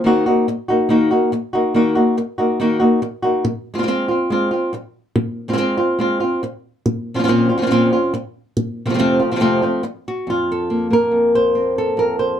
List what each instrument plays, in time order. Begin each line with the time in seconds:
0.04 nylon-string guitar D#3 A#3 D#4 F#4
0.26 nylon-string guitar A#3 D#4 F#4
0.48 muted nylon-string guitar stroke
0.68 nylon-string guitar A#3 D#4 F#4
0.89 nylon-string guitar D#3 A#3 D#4 F#4
1.11 nylon-string guitar A#3 D#4 F#4
1.32 muted nylon-string guitar stroke
1.53 nylon-string guitar A#3 D#4 F#4
1.74 nylon-string guitar D#3 A#3 D#4 F#4
1.95 nylon-string guitar A#3 D#4 F#4
2.17 muted nylon-string guitar stroke
2.38 nylon-string guitar A#3 D#4 F#4
2.60 nylon-string guitar D#3 A#3 D#4 F#4
2.80 nylon-string guitar A#3 D#4 F#4
3.02 muted nylon-string guitar stroke
3.22 nylon-string guitar A#3 D#4 F#4
3.45 muted nylon-string guitar stroke
3.74 nylon-string guitar G#3 C4 F4
3.78 nylon-string guitar G#3 C4 F4
3.83 nylon-string guitar G#3 C4 F4
3.88 nylon-string guitar G#3 C4 F4
4.08 nylon-string guitar C4 F4
4.30 nylon-string guitar G#3 C4 F4
4.51 nylon-string guitar C4 F4
4.73 muted nylon-string guitar stroke
5.16 muted nylon-string guitar stroke
5.48 nylon-string guitar G#3 C4 F4
5.53 nylon-string guitar G#3 C4 F4
5.58 nylon-string guitar G#3 C4 F4
5.77 nylon-string guitar C4 F4
5.99 nylon-string guitar G#3 C4 F4
6.20 nylon-string guitar C4 F4
6.43 muted nylon-string guitar stroke
6.86 muted nylon-string guitar stroke
7.14 nylon-string guitar F3 C4 C#4 F4
7.19 nylon-string guitar F3 C4 C#4 F4
7.24 nylon-string guitar A#2 F3 C4 C#4 F4
7.28 nylon-string guitar F3 C4 C#4 F4
7.49 nylon-string guitar C4 C#4 F4
7.58 nylon-string guitar F3 C4 C#4 F4
7.62 nylon-string guitar F3 C4 C#4 F4
7.67 nylon-string guitar F3 C4 C#4 F4
7.71 nylon-string guitar A#2 F3 C4 C#4 F4
7.93 nylon-string guitar C4 C#4 F4
8.14 muted nylon-string guitar stroke
8.57 muted nylon-string guitar stroke
8.85 nylon-string guitar C3 F3 A3 C4 F4
8.90 nylon-string guitar C3 F3 A3 C4 F4
8.94 nylon-string guitar F3 A3 C4 F4
8.99 nylon-string guitar F2 C3 F3 A3 C4 F4
9.19 nylon-string guitar F3 A3 C4 F4
9.31 nylon-string guitar C3 F3 A3 C4 F4
9.36 nylon-string guitar C3 F3 A3 C4 F4
9.40 nylon-string guitar F2 C3 F3 A3 C4 F4
9.62 nylon-string guitar F3 A3 C4 F4
9.83 muted nylon-string guitar stroke
10.08 nylon-string guitar F#4
10.27 nylon-string guitar F2 F4
10.52 nylon-string guitar A4
10.70 nylon-string guitar A#3
10.90 nylon-string guitar A#3 A#4
11.11 nylon-string guitar F2
11.35 nylon-string guitar C5
11.55 nylon-string guitar C4
11.78 nylon-string guitar A4
11.97 nylon-string guitar F2 A#4
12.19 nylon-string guitar C5